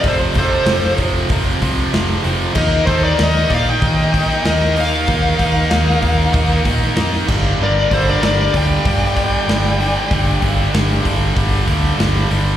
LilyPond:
<<
  \new Staff \with { instrumentName = "Lead electric guitar" } { \time 4/4 \key g \minor \tempo 4 = 96 c''8 c''4 r2 r8 | ees''8 c''16 d''16 ees''8 f''16 g''4~ g''16 ees''8 f''8~ | f''2~ f''8 r4. | d''8 c''16 d''16 d''8 g''2~ g''8~ |
g''2. r4 | }
  \new Staff \with { instrumentName = "Lead electric guitar" } { \time 4/4 \key g \minor a'8 a'4 r2 r8 | bes'8 a'16 bes'16 bes'8 d''16 ees''4~ ees''16 bes'8 bes'8~ | bes'2~ bes'8 r4. | bes'8 a'16 bes'16 bes'8 d''2~ d''8~ |
d''2. r4 | }
  \new Staff \with { instrumentName = "Distorted electric guitar" } { \clef bass \time 4/4 \key g \minor <f, c f>8 <f, c f>8 <f, c f>8 <f, c f>8 <f, c f>8 <f, c f>8 <f, c f>8 <f, c f>8 | <ees bes ees'>8 <ees bes ees'>8 <ees bes ees'>8 <ees bes ees'>8 <ees bes ees'>8 <ees bes ees'>8 <ees bes ees'>8 <ees bes ees'>8 | <ees bes ees'>8 <ees bes ees'>8 <ees bes ees'>8 <ees bes ees'>8 <ees bes ees'>8 <ees bes ees'>8 <ees bes ees'>8 <g, d g>8 | <g, d g>8 <g, d g>8 <g, d g>8 <g, d g>8 <g, d g>8 <g, d g>8 <g, d g>8 <g, d g>8 |
<g, d g>8 <g, d g>8 <g, d g>8 <g, d g>8 <g, d g>8 <g, d g>8 <g, d g>8 <g, d g>8 | }
  \new Staff \with { instrumentName = "Distorted electric guitar" } { \clef bass \time 4/4 \key g \minor <f, c f>8 <f, c f>8 <f, c f>8 <f, c f>8 <f, c f>8 <f, c f>8 <f, c f>8 <f, c f>8 | <ees bes ees'>8 <ees bes ees'>8 <ees bes ees'>8 <ees bes ees'>8 <ees bes ees'>8 <ees bes ees'>8 <ees bes ees'>8 <ees bes ees'>8 | <ees bes ees'>8 <ees bes ees'>8 <ees bes ees'>8 <ees bes ees'>8 <ees bes ees'>8 <ees bes ees'>8 <ees bes ees'>8 <g, d g>8 | <g, d g>8 <g, d g>8 <g, d g>8 <g, d g>8 <g, d g>8 <g, d g>8 <g, d g>8 <g, d g>8 |
<g, d g>8 <g, d g>8 <g, d g>8 <g, d g>8 <g, d g>8 <g, d g>8 <g, d g>8 <g, d g>8 | }
  \new Staff \with { instrumentName = "Fingered electric bass" } { \clef bass \time 4/4 \key g \minor f,,8 f,,8 f,,8 f,,8 f,,8 c,8 f,,8 f,,8 | ees,8 ees,8 ees,8 bes,8 ees4 ees,4 | ees,8 ees,8 ees,8 ees,8 ees,8 bes,8 f,8 g,,8 | g,,8 g,,8 g,,8 d,8 g,4 g,,4 |
g,,8 g,,8 g,,8 g,,8 g,,8 d,8 g,,8 g,,8 | }
  \new DrumStaff \with { instrumentName = "Drums" } \drummode { \time 4/4 <hho bd>8 <hho bd>8 <hho sn>8 <hho bd>8 <hho bd>8 <hho bd>8 <hho sn>8 hho8 | <cymc bd>8 <hho bd>8 <hho sn>8 <hho bd>8 <hho bd>8 <hho bd>16 sn16 <hho sn>16 sn16 hho8 | <hho bd>8 <hho bd>8 <hho sn>8 <hho bd>8 <hho bd>8 <hho bd>16 sn16 <hho sn>16 sn16 <cymc bd>8 | r8 <hho bd>8 <hho sn>8 <hho bd>8 <hho bd>8 <hho bd>8 <hho sn>16 sn16 hho8 |
<hho bd>8 <hho bd>8 <hho sn>8 <hho bd>8 <hho bd>8 <hho bd>16 sn16 <hho sn>16 sn16 hho8 | }
>>